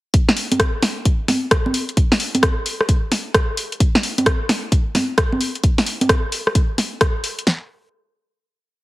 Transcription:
0.14 kick, closed hi-hat
0.29 snare
0.37 open hi-hat
0.52 closed hi-hat, high conga
0.60 kick, cross-stick, closed hi-hat
0.82 snare, open hi-hat
1.05 kick, closed hi-hat
1.28 snare, open hi-hat, high conga
1.51 kick, cross-stick, closed hi-hat
1.66 high conga
1.74 open hi-hat
1.89 closed hi-hat
1.97 kick, closed hi-hat
2.12 snare, open hi-hat
2.20 open hi-hat
2.35 closed hi-hat, high conga
2.43 kick, cross-stick, closed hi-hat
2.66 open hi-hat
2.81 cross-stick
2.89 kick, closed hi-hat
3.12 snare, open hi-hat
3.34 kick, cross-stick, closed hi-hat
3.57 open hi-hat
3.72 closed hi-hat
3.80 kick, closed hi-hat
3.95 snare
4.03 open hi-hat
4.18 closed hi-hat, high conga
4.26 kick, cross-stick, closed hi-hat
4.49 snare, open hi-hat
4.72 kick, closed hi-hat
4.95 snare, open hi-hat, high conga
5.18 kick, cross-stick, closed hi-hat
5.32 high conga
5.41 open hi-hat
5.55 closed hi-hat
5.64 kick, closed hi-hat
5.78 snare, open hi-hat
5.86 open hi-hat
6.01 closed hi-hat, high conga
6.09 kick, cross-stick, closed hi-hat
6.32 open hi-hat
6.47 cross-stick
6.55 kick, closed hi-hat
6.78 snare, open hi-hat
7.01 kick, cross-stick, closed hi-hat
7.24 open hi-hat
7.39 closed hi-hat
7.47 snare

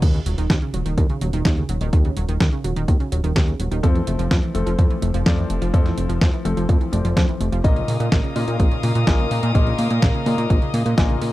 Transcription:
0.02 D#2 D#3, kick, closed hi-hat, crash
0.14 C#3, closed hi-hat
0.26 D#1 F#3, closed hi-hat
0.38 D#1 D#3, closed hi-hat
0.50 D#2 D#3, kick, snare, closed hi-hat
0.62 C#3, closed hi-hat
0.73 D#1 F#3, closed hi-hat
0.85 D#1 D#3, closed hi-hat
0.98 D#2 D#3, kick, closed hi-hat
1.10 C#3, closed hi-hat
1.21 D#1 F#3, closed hi-hat
1.33 D#1 D#3, closed hi-hat
1.45 D#2 D#3, kick, snare, closed hi-hat
1.57 C#3, closed hi-hat
1.69 D#1 F#3, closed hi-hat
1.81 D#1 D#3, closed hi-hat
1.93 D#2 D#3, kick, closed hi-hat
2.05 C#3, closed hi-hat
2.17 D#1 F#3, closed hi-hat
2.29 D#1 D#3, closed hi-hat
2.40 D#2 D#3, kick, snare, closed hi-hat
2.52 C#3, closed hi-hat
2.64 D#1 F#3, closed hi-hat
2.76 D#1 D#3, closed hi-hat
2.88 D#2 D#3, kick, closed hi-hat
3.00 C#3, closed hi-hat
3.12 D#1 F#3, closed hi-hat
3.24 D#1 D#3, closed hi-hat
3.36 D#2 D#3, kick, snare, closed hi-hat
3.48 C#3, closed hi-hat
3.59 D#1 F#3, closed hi-hat
3.71 D#1 D#3, closed hi-hat
3.83 F2 F3 A3 C4 A4, kick, closed hi-hat
3.95 E3, closed hi-hat
4.07 F1 A3, closed hi-hat
4.19 F1 F3, closed hi-hat
4.31 F2 F3, kick, snare, closed hi-hat
4.43 E3, closed hi-hat
4.55 F1 F3 A3 C4 A4, closed hi-hat
4.66 F1 F3, closed hi-hat
4.78 F2 F3, kick, closed hi-hat
4.90 E3, closed hi-hat
5.02 F1 A3, closed hi-hat
5.14 F1 F3, closed hi-hat
5.26 F2 F3 A3 C4 D5, kick, snare, closed hi-hat
5.38 E3, closed hi-hat
5.50 F1 A3, closed hi-hat
5.62 F1 F3, closed hi-hat
5.74 F2 F3 A3 C4 A4, kick, closed hi-hat
5.85 E3, snare, closed hi-hat
5.98 F1 A3, closed hi-hat
6.09 F1 F3, closed hi-hat
6.21 F2 F3, kick, snare, closed hi-hat
6.33 E3, closed hi-hat
6.45 F1 F3 A3 C4 A4, closed hi-hat
6.57 F1 F3, closed hi-hat
6.69 F2 F3, kick, closed hi-hat
6.81 E3, closed hi-hat
6.92 F1 F3 A3 C4 D5, closed hi-hat
7.05 F1 F3, closed hi-hat
7.17 F2 F3, kick, snare, closed hi-hat
7.28 E3, closed hi-hat
7.40 F1 A3, closed hi-hat
7.52 F1 F3, closed hi-hat
7.64 A#1 A#2 A#3 D#4 F4 A#4 D#5 F5 D#6, kick, closed hi-hat
7.76 C#3, closed hi-hat
7.88 A#2 C#3, open hi-hat
8.00 A#2, closed hi-hat
8.12 A#1 A#2, kick, snare, closed hi-hat
8.24 C#3, closed hi-hat
8.36 A#2 C#3 A#3 D#4 F4 D#5, open hi-hat
8.48 A#2, closed hi-hat
8.60 A#1 A#2, kick, closed hi-hat
8.71 C#3, closed hi-hat
8.83 A#2 C#3, open hi-hat
8.95 A#2, closed hi-hat
9.07 A#1 A#2 A#3 D#4 F4 G#5, kick, snare, closed hi-hat
9.19 C#3, closed hi-hat
9.31 A#2 C#3, open hi-hat
9.43 A#2, closed hi-hat
9.55 A#1 A#2 A#3 D#4 F4 D#5, kick, closed hi-hat
9.67 C#3, closed hi-hat
9.79 A#2 C#3, open hi-hat
9.90 A#2, closed hi-hat
10.02 A#1 A#2, kick, snare, closed hi-hat
10.14 C#3, closed hi-hat
10.26 A#2 C#3 A#3 D#4 F4 D#5, open hi-hat
10.38 A#2, closed hi-hat
10.50 A#1 A#2, kick, closed hi-hat
10.62 C#3, closed hi-hat
10.74 A#2 C#3, open hi-hat
10.86 A#2, closed hi-hat
10.97 A#1 A#2 A#3 D#4 F4 G#5, kick, snare, closed hi-hat
11.10 C#3, closed hi-hat
11.22 A#2 C#3, open hi-hat

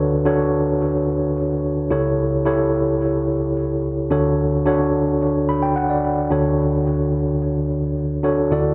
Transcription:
Already playing: D2 D3 D4 F#4 A4 B4 C#5
0.25 D4 F#4 A4 C#5
1.90 C#2 C#3 E4 G4 A4 C#5
2.45 E4 G4 A4 C#5
4.11 D2 D3 D4 F#4 A4 C#5
4.66 D4 F#4 A4 C#5
5.49 B5
5.62 G5
5.76 F#5
5.90 D5
6.31 D2 D3 D4 F#4 A4 C#5
8.23 D4 F#4 A4 C#5
8.51 D2 D3 E4 F#4 A4 D5

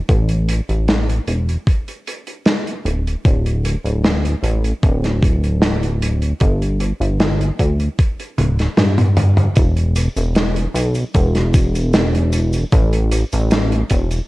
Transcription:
0.09 A1, kick, closed hi-hat
0.29 closed hi-hat
0.49 closed hi-hat
0.69 A1, closed hi-hat
0.88 snare, closed hi-hat
1.09 closed hi-hat
1.27 E1, closed hi-hat
1.49 closed hi-hat
1.67 kick, closed hi-hat
1.88 closed hi-hat
2.07 closed hi-hat
2.27 closed hi-hat
2.46 snare, closed hi-hat
2.67 closed hi-hat
2.85 D1, closed hi-hat
3.07 closed hi-hat
3.25 D1, kick, closed hi-hat
3.46 closed hi-hat
3.65 closed hi-hat
3.84 D1, closed hi-hat
4.04 snare, closed hi-hat
4.25 closed hi-hat
4.43 A1, closed hi-hat
4.64 closed hi-hat
4.83 D1, kick, closed hi-hat
5.04 snare, closed hi-hat
5.23 kick, closed hi-hat
5.44 closed hi-hat
5.62 snare, closed hi-hat
5.83 closed hi-hat
6.02 closed hi-hat
6.22 closed hi-hat
6.40 G1, kick, closed hi-hat
6.62 closed hi-hat
6.80 closed hi-hat
7.00 G1, closed hi-hat
7.20 snare, closed hi-hat
7.41 closed hi-hat
7.59 D2, kick, closed hi-hat
7.80 closed hi-hat
7.99 kick, closed hi-hat
8.20 closed hi-hat
8.38 D1, closed hi-hat, high tom
8.59 snare, closed hi-hat
8.77 G2, snare, closed hi-hat, mid tom
8.98 closed hi-hat, mid tom
9.17 closed hi-hat, mid tom
9.37 closed hi-hat, mid tom
9.56 E1, kick, closed hi-hat, cabasa
9.77 closed hi-hat
9.96 closed hi-hat, cabasa
10.17 E1, closed hi-hat, cabasa
10.35 snare, closed hi-hat, cabasa
10.56 closed hi-hat
10.74 B1, closed hi-hat, cabasa
10.95 closed hi-hat, cabasa
11.14 E1, kick, closed hi-hat, cabasa
11.35 snare, closed hi-hat
11.54 kick, closed hi-hat, cabasa
11.75 closed hi-hat, cabasa
11.93 snare, closed hi-hat, cabasa
12.15 closed hi-hat
12.33 closed hi-hat, cabasa
12.53 closed hi-hat, cabasa
12.72 A1, kick, closed hi-hat, cabasa
12.93 closed hi-hat
13.11 closed hi-hat, cabasa
13.33 A1, closed hi-hat, cabasa
13.51 snare, closed hi-hat, cabasa
13.72 closed hi-hat
13.90 E1, kick, closed hi-hat, cabasa
14.11 closed hi-hat, cabasa

